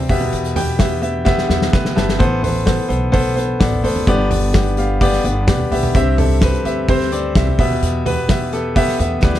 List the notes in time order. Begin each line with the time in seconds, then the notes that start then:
Already playing: G2 C4 G4 B4 D5 E5 G5 A5
0.09 E2 B2 B3 G4 E5, kick, hi-hat pedal, open hi-hat
0.21 floor tom, open hi-hat
0.33 E2, hi-hat pedal, open hi-hat
0.44 hi-hat pedal
0.56 B3 G4 G5, floor tom, hi-hat pedal, open hi-hat
0.79 B3 G4 E5, kick, snare, hi-hat pedal, open hi-hat
1.02 B3 G4 E5, hi-hat pedal, open hi-hat
1.25 B3 G4 E5, kick, snare
1.38 snare
1.48 E2 B3 G4 E5, snare
1.62 snare
1.72 D2 B3 G4 B4 E5, kick, snare
1.85 snare
1.96 G1 B3 G4 E5 A5, snare
2.09 snare
2.19 A1 A2 E3 B3 A4 C5, kick, hi-hat pedal, open hi-hat
2.42 B3 A4 C5, floor tom, hi-hat pedal, open hi-hat
2.66 B3 A4 C5, kick, snare, hi-hat pedal, open hi-hat
2.88 B1 B3 A4 C5, hi-hat pedal, open hi-hat
3.12 B3 A4 C5, kick, hi-hat pedal, open hi-hat
3.35 B3 A4 C5, hi-hat pedal, open hi-hat
3.60 A1 B3 A4 D5, kick, snare, hi-hat pedal, open hi-hat
3.73 floor tom
3.83 F1 B3 A4 C5, hi-hat pedal, open hi-hat
3.96 floor tom
4.07 G1 G2 D3 B3 G4 D5, kick, hi-hat pedal, open hi-hat
4.30 B3 G4 D5, floor tom, hi-hat pedal, open hi-hat
4.43 open hi-hat
4.54 B3 G4 D5, kick, snare, hi-hat pedal, open hi-hat
4.66 hi-hat pedal
4.77 B3 G4 F5, hi-hat pedal, open hi-hat
5.01 B3 G4 D5, kick, hi-hat pedal, open hi-hat
5.13 snare
5.24 G1 B3 G4 D5, hi-hat pedal, open hi-hat
5.47 B1 B3 G4 D5, kick, snare, hi-hat pedal, open hi-hat
5.60 floor tom
5.71 B1 B3 G4 E5, hi-hat pedal, open hi-hat
5.83 floor tom
5.95 C2 G2 C4 G4 E5, kick, hi-hat pedal, open hi-hat
6.18 C4 G4 A4, floor tom, hi-hat pedal, open hi-hat
6.30 open hi-hat
6.41 C4 G4 B4, kick, snare, hi-hat pedal, open hi-hat
6.53 hi-hat pedal
6.65 D2 C4 G4 E5, hi-hat pedal, open hi-hat
6.88 C4 G4 C5, kick, hi-hat pedal, open hi-hat
7.00 snare
7.12 C4 G4 D5, hi-hat pedal, open hi-hat
7.35 C2 C4 G4 E5, kick, snare, hi-hat pedal, open hi-hat
7.47 floor tom
7.59 E2 B2 B3 G4 E5, kick, hi-hat pedal, open hi-hat
7.71 floor tom
7.82 E2, hi-hat pedal, open hi-hat
8.05 B3 G4 B4, floor tom, hi-hat pedal, open hi-hat
8.29 B3 G4 E5, kick, snare, hi-hat pedal, open hi-hat
8.53 B3 G4 A4, hi-hat pedal, open hi-hat
8.76 B3 G4 E5, kick, hi-hat pedal, open hi-hat
8.88 snare
8.99 E2 B3 G4 E5, hi-hat pedal, open hi-hat
9.22 D2 B3 E4 G4 B4 D5, kick, snare
9.34 snare